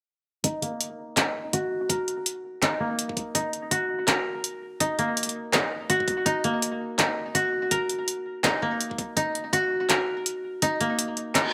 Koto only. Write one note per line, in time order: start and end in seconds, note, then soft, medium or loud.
0.44 1.16 D#4 medium
0.62 2.80 A#3 medium
1.17 2.62 D#4 medium
1.53 3.64 F#4 medium
1.89 3.73 A#4 medium
2.62 3.34 D#4 medium
2.80 4.98 A#3 medium
3.35 4.80 D#4 medium
3.71 5.82 F#4 medium
4.07 5.91 A#4 medium
4.80 5.53 D#4 medium
4.99 6.44 A#3 medium
5.53 6.25 D#4 medium
5.90 7.34 F#4 medium
6.26 6.98 D#4 medium
6.44 8.62 A#3 medium
6.99 8.43 D#4 medium
7.35 9.46 F#4 medium
7.71 9.55 A#4 medium
8.44 9.16 D#4 medium
8.62 10.80 A#3 medium
9.16 10.62 D#4 medium
9.53 11.53 F#4 loud
9.89 11.53 A#4 medium
10.62 11.34 D#4 medium
10.80 11.53 A#3 medium
11.35 11.53 D#4 medium